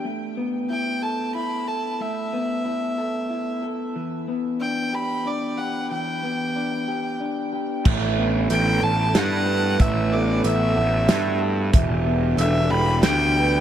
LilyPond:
<<
  \new Staff \with { instrumentName = "Violin" } { \time 3/4 \key e \minor \tempo 4 = 92 r4 g''8 a''8 b''8 a''8 | e''2~ e''8 r8 | r4 g''8 b''8 d''8 fis''8 | g''2 r4 |
r4 g''8 a''8 fis''4 | e''8 d''8 e''4. r8 | r4 e''8 b''8 g''4 | }
  \new Staff \with { instrumentName = "Vibraphone" } { \time 3/4 \key e \minor r2. | r2. | r2. | r2. |
e''4 a'4 r8 b'8~ | b'8 a'4 e''4 r8 | e''4 a'4 r8 b'8 | }
  \new Staff \with { instrumentName = "Clean electric guitar" } { \time 3/4 \key e \minor a8 b8 e'8 a'8 e'8 a'8 | a8 b8 e'8 a'8 e'8 a'8 | e8 b8 d'8 g'8 d'8 g'8 | e8 b8 d'8 g'8 d'8 g'8 |
a8 b8 e'8 a'8 e'8 a'8 | a8 b8 e'8 a'8 e'8 a'8 | e8 b8 d'8 g'8 d'8 g'8 | }
  \new Staff \with { instrumentName = "String section" } { \time 3/4 \key e \minor << { r2. | r2. | r2. | r2. |
e'2. | fis'2. | <e g'>2. | } \\ { r2. | r2. | r2. | r2. |
<a b>2.~ | <a b>2. | <b d'>2. | } >> }
  \new Staff \with { instrumentName = "Picked electric bass" } { \clef bass \time 3/4 \key e \minor r2. | r2. | r2. | r2. |
a,,4 a,,8 a,,8 g,4 | a,,4 a,,8 a,,8 g,4 | e,,4 e,,8 e,,8 d,4 | }
  \new DrumStaff \with { instrumentName = "Drums" } \drummode { \time 3/4 r4 r4 r4 | r4 r4 r4 | r4 r4 r4 | r4 r4 r4 |
<cymc bd>4 hh4 <hh sn>4 | <hh bd>4 hh4 <hh sn>4 | <hh bd>4 hh4 <hh sn>4 | }
>>